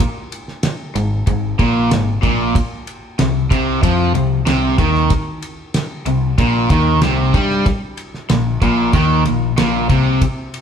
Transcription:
0.00 kick, ride
0.32 ride
0.48 snare
0.63 snare, ride
0.95 picked electric bass G#1, overdriven electric guitar G#2, ride
1.27 picked electric bass G#1, overdriven electric guitar G#2, kick, ride
1.59 picked electric bass A#1, overdriven electric guitar A#2, kick, ride
1.91 picked electric bass G#1, overdriven electric guitar G#2, snare, ride
2.22 picked electric bass A#1, overdriven electric guitar A#2, kick, ride
2.55 kick, ride
2.87 ride
3.19 picked electric bass C2, overdriven electric guitar C3, snare, ride
3.51 picked electric bass C2, overdriven electric guitar C3, kick, ride
3.83 picked electric bass F2, overdriven electric guitar F3, kick, ride
4.14 picked electric bass C2, overdriven electric guitar C3, ride
4.46 picked electric bass C2, overdriven electric guitar C3, snare, ride
4.78 picked electric bass D#2, overdriven electric guitar D#3, kick, ride
4.95 snare
5.10 kick, ride
5.42 ride
5.74 snare, ride
6.06 picked electric bass C2, overdriven electric guitar C3, ride
6.38 picked electric bass A#1, overdriven electric guitar A#2, kick, ride
6.70 picked electric bass D#2, overdriven electric guitar D#3, kick, ride
7.02 picked electric bass C2, overdriven electric guitar C3, snare, ride
7.34 picked electric bass G2, overdriven electric guitar G3, kick, ride
7.50 snare
7.66 kick, ride
7.97 ride
8.14 snare
8.29 picked electric bass A#1, overdriven electric guitar A#2, snare, ride
8.62 picked electric bass A#1, overdriven electric guitar A#2, kick, ride
8.93 picked electric bass D#2, overdriven electric guitar D#3, kick, ride
9.25 picked electric bass A#1, overdriven electric guitar A#2, ride
9.58 picked electric bass A#1, overdriven electric guitar A#2, snare, ride
9.89 picked electric bass C2, overdriven electric guitar C3, kick, ride
10.22 kick, ride
10.54 ride

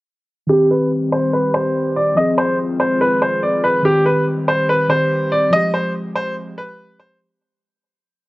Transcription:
0.47 synth keys D#3 C4, analog synth pad D#3 G3 C4 G4, grand piano G4
0.52 synth keys G4
0.71 grand piano B4
1.12 grand piano C5
1.33 grand piano B4
1.54 grand piano C5
1.96 grand piano D5
2.15 analog synth pad D#3 G#3 F4, synth keys F3 C4, grand piano D#5
2.20 synth keys G#4
2.38 grand piano C5
2.80 grand piano C5
3.01 grand piano B4
3.22 grand piano C5
3.43 grand piano D5
3.64 grand piano B4
3.82 synth keys D#3 C4, analog synth pad G3 G4, grand piano G4
3.88 synth keys G4
4.06 grand piano B4
4.48 grand piano C5
4.69 grand piano B4
4.88 synth keys D#3 C4 G4, grand piano C5
5.32 grand piano D5
5.50 synth keys F3 G#3, analog synth pad F3 G#3, grand piano D#5
5.56 synth keys G4
5.74 grand piano C5
6.15 grand piano C5
6.58 grand piano B4
7.00 grand piano C5

